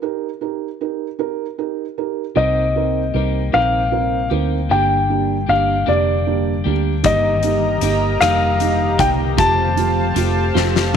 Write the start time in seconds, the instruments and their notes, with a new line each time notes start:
0.02 felt piano D#4 G4 A#4
0.41 felt piano D#4 G4 A#4
0.81 felt piano D#4 G4 A#4
1.19 felt piano D#4 G4 A#4
1.58 felt piano D#4 G4 A#4
1.98 felt piano D#4 G4 A#4
2.35 fingered electric bass C2, clean electric guitar C3 G3 A#3 D#4 G4, felt piano C4 D#4 A#4, grand piano D#5
2.76 felt piano C4 D#4 A#4
3.14 fingered electric bass C2, clean electric guitar G3 A#3 D#4 G4, felt piano C4 D#4 A#4
3.52 fingered electric bass A#1, clean electric guitar C3 G3 A#3 D#4 G4, felt piano C4 D#4 A#4, grand piano F5
3.92 felt piano C4 D#4 A#4
4.30 fingered electric bass D2, clean electric guitar A#3 D#4 G4, felt piano C4 D#4 A#4
4.69 fingered electric bass G1, clean electric guitar G2 D3 G3 A#3 D4 G4, felt piano A#3 D4 G4, grand piano G5
5.10 felt piano A#3 D4 G4
5.46 fingered electric bass G1, clean electric guitar G3 A#3 D4 G4, felt piano A#3 D4 G4, grand piano F5
5.86 fingered electric bass F1, clean electric guitar G2 D3 G3 A#3 D4 G4, felt piano A#3 D4 G4, grand piano D5
6.27 felt piano A#3 D4 G4
6.64 fingered electric bass D2, clean electric guitar G3 A#3 D4 G4, felt piano A#3 D4 G4
7.03 fingered electric bass G1, clean electric guitar G2 D#3 G3 A#3 D#4 G4, felt piano A#3 D#4 G4, analog synth pad G4 A#4 D#5 A#5, grand piano D#5, kick, closed hi-hat
7.43 felt piano A#3 D#4 G4, closed hi-hat
7.81 fingered electric bass G1, clean electric guitar G3 A#3 D#4 G4, felt piano A#3 D#4 G4, closed hi-hat
8.20 fingered electric bass F1, clean electric guitar G2 D#3 G3 A#3 D#4 G4, felt piano A#3 D#4 G4, grand piano F5, cross-stick, closed hi-hat
8.60 felt piano A#3 D#4 G4, closed hi-hat
8.98 fingered electric bass C2, clean electric guitar G3 A#3 D#4 G4, felt piano A#3 D#4 G4, grand piano G5, kick, closed hi-hat
9.37 fingered electric bass F1, clean electric guitar F3 A3 C4 F4 G4, felt piano A3 F4 G4, analog synth pad C5 F5 A5, grand piano A5, kick, closed hi-hat
9.77 felt piano A3 F4 G4, closed hi-hat
10.14 fingered electric bass F1, clean electric guitar A3 C4 F4 G4, felt piano A3 F4 G4, closed hi-hat
10.54 fingered electric bass F1, clean electric guitar F3 A3 C4 F4 G4, felt piano A3 F4 G4, snare
10.76 snare